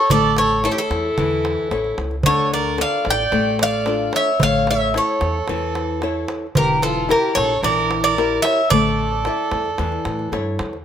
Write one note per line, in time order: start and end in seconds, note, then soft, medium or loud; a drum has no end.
0.10 0.66 A1 medium
0.10 0.63 A3 medium
0.10 0.36 A4 medium
0.10 0.38 D5 loud
0.10 darbuka dum loud
0.37 0.63 A4 medium
0.37 0.65 C#5 medium
0.37 darbuka tek medium
0.63 0.70 E4 medium
0.63 1.08 E4 medium
0.63 0.71 A4 medium
0.63 1.08 A4 soft
0.63 1.08 C#5 medium
0.63 darbuka tek medium
0.70 0.76 E4 medium
0.70 0.78 G4 medium
0.77 1.94 E4 medium
0.77 1.95 A4 medium
0.77 darbuka tek soft
0.90 1.09 E2 medium
0.90 darbuka tek medium
1.18 1.55 E2 medium
1.18 1.70 E3 medium
1.18 darbuka tek medium
1.18 darbuka dum medium
1.31 darbuka tek soft
1.45 darbuka tek medium
1.58 darbuka tek soft
1.71 1.96 A1 medium
1.71 2.14 E4 soft
1.71 2.15 A4 soft
1.71 2.15 C#5 medium
1.71 darbuka tek medium
1.84 darbuka tek soft
1.98 2.22 C#2 medium
1.98 darbuka tek medium
2.11 darbuka tek soft
2.23 2.82 D2 medium
2.23 2.78 D3 medium
2.23 2.50 A4 medium
2.23 2.53 C#5 medium
2.23 darbuka dum medium
2.54 2.78 A#4 medium
2.54 2.78 D5 medium
2.65 darbuka tek soft
2.77 3.21 D4 soft
2.77 3.21 F4 soft
2.77 3.22 A4 medium
2.77 3.05 D5 medium
2.77 3.05 F5 medium
2.77 darbuka tek medium
3.05 3.25 A1 medium
3.05 3.57 D5 medium
3.05 darbuka tek medium
3.10 3.58 G5 loud
3.32 4.08 A1 medium
3.32 3.85 A3 medium
3.32 darbuka tek medium
3.59 4.10 D5 medium
3.59 4.11 F5 loud
3.59 darbuka tek medium
3.86 4.30 D4 soft
3.86 4.30 F4 soft
3.86 4.30 A4 medium
3.86 darbuka tek medium
4.13 4.38 C#5 medium
4.13 4.40 E5 medium
4.13 darbuka tek medium
4.40 4.96 A1 medium
4.40 4.93 A3 medium
4.40 4.67 C#5 medium
4.40 4.69 F5 loud
4.40 darbuka dum medium
4.67 4.94 C#5 medium
4.67 4.94 E5 medium
4.67 darbuka tek medium
4.81 darbuka tek soft
4.94 5.38 E4 soft
4.94 5.38 A4 soft
4.94 6.26 A4 medium
4.94 5.38 C#5 medium
4.94 6.26 C#5 medium
4.94 darbuka tek medium
5.21 5.40 E2 medium
5.21 darbuka tek medium
5.48 6.24 E2 medium
5.48 6.01 E3 medium
5.48 darbuka tek medium
5.75 darbuka tek medium
6.02 6.45 E4 medium
6.02 6.45 A4 soft
6.02 6.46 C#5 medium
6.02 darbuka tek medium
6.28 darbuka tek medium
6.55 7.12 E1 loud
6.55 7.08 E3 medium
6.55 6.81 G4 medium
6.55 6.83 A#4 medium
6.55 darbuka dum loud
6.82 7.08 F4 medium
6.82 7.08 A4 medium
6.82 darbuka tek medium
6.96 darbuka tek soft
7.09 7.52 E4 medium
7.09 7.52 G4 soft
7.09 7.35 G4 medium
7.09 7.53 A#4 medium
7.09 7.35 A#4 medium
7.09 darbuka tek medium
7.35 7.55 A#1 medium
7.35 7.60 A4 medium
7.35 7.60 C#5 medium
7.35 darbuka tek medium
7.62 8.38 A#1 loud
7.62 8.15 E3 medium
7.62 8.00 A#4 medium
7.62 8.03 D5 medium
7.62 darbuka tek medium
7.91 darbuka tek medium
8.02 8.40 A#4 medium
8.02 8.41 D5 medium
8.18 8.60 E4 medium
8.18 8.61 G4 soft
8.18 8.60 A#4 medium
8.18 darbuka tek medium
8.42 8.69 C#5 medium
8.42 8.70 E5 loud
8.42 darbuka tek medium
8.70 9.27 A1 medium
8.70 9.24 A3 medium
8.70 10.28 A4 medium
8.70 10.27 D5 loud
8.70 darbuka dum medium
8.85 darbuka tek soft
9.12 darbuka tek soft
9.25 9.68 E4 medium
9.25 9.68 A4 soft
9.25 9.69 E5 medium
9.25 darbuka tek medium
9.51 9.70 E2 medium
9.51 darbuka tek medium
9.65 darbuka tek soft
9.78 9.97 E2 medium
9.78 10.30 E3 medium
9.78 darbuka tek medium
9.92 darbuka tek soft
10.05 10.29 A2 medium
10.05 darbuka tek medium
10.19 darbuka tek soft
10.32 10.56 G2 medium
10.32 10.75 E4 medium
10.32 10.75 A4 soft
10.32 10.75 C#5 medium
10.32 darbuka tek medium
10.59 10.83 E2 medium
10.59 darbuka tek medium
10.73 darbuka tek soft